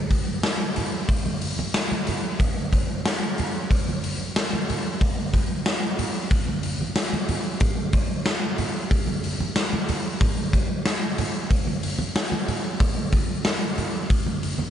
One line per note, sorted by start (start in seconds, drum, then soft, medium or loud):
0.11 kick medium
0.11 open hi-hat medium
0.43 snare loud
0.43 open hi-hat medium
0.76 open hi-hat medium
0.76 low conga medium
1.09 kick loud
1.09 open hi-hat medium
1.26 high conga medium
1.41 open hi-hat medium
1.59 high conga medium
1.74 snare loud
1.74 open hi-hat medium
1.92 high conga medium
2.07 open hi-hat medium
2.07 low conga medium
2.40 kick loud
2.40 open hi-hat medium
2.40 low conga medium
2.73 kick medium
2.73 open hi-hat medium
3.06 snare loud
3.06 open hi-hat medium
3.38 open hi-hat medium
3.38 low conga medium
3.71 kick medium
3.71 open hi-hat medium
3.88 high conga medium
4.04 open hi-hat medium
4.36 snare loud
4.36 open hi-hat medium
4.53 high conga medium
4.70 open hi-hat medium
4.70 low conga medium
5.01 kick loud
5.01 open hi-hat medium
5.01 low conga medium
5.33 kick medium
5.33 open hi-hat medium
5.33 high conga medium
5.33 low conga medium
5.66 snare loud
5.66 open hi-hat medium
5.99 open hi-hat medium
5.99 low conga medium
6.31 kick loud
6.31 open hi-hat medium
6.48 high conga medium
6.63 open hi-hat medium
6.81 high conga medium
6.96 snare loud
6.96 open hi-hat medium
7.13 high conga medium
7.29 open hi-hat medium
7.29 high conga medium
7.29 low conga medium
7.60 kick loud
7.60 open hi-hat medium
7.60 low conga medium
7.93 kick medium
7.93 open hi-hat medium
8.26 snare loud
8.26 open hi-hat medium
8.58 open hi-hat medium
8.58 low conga medium
8.91 kick loud
8.91 open hi-hat medium
9.07 high conga medium
9.24 open hi-hat medium
9.40 high conga medium
9.56 snare loud
9.56 open hi-hat medium
9.73 high conga medium
9.89 open hi-hat medium
9.89 low conga medium
10.21 kick loud
10.21 open hi-hat medium
10.21 low conga medium
10.53 kick medium
10.53 open hi-hat medium
10.86 snare loud
10.86 open hi-hat medium
11.18 open hi-hat medium
11.18 low conga medium
11.50 kick medium
11.50 open hi-hat medium
11.67 high conga medium
11.83 open hi-hat medium
11.99 high conga medium
12.16 snare loud
12.16 open hi-hat medium
12.32 high conga medium
12.48 open hi-hat medium
12.48 low conga medium
12.80 kick loud
12.80 open hi-hat medium
12.80 low conga medium
13.12 kick medium
13.12 open hi-hat medium
13.45 snare loud
13.45 open hi-hat medium
13.78 open hi-hat medium
13.78 low conga medium
14.10 kick loud
14.10 open hi-hat medium
14.26 high conga medium
14.43 open hi-hat medium
14.58 high conga medium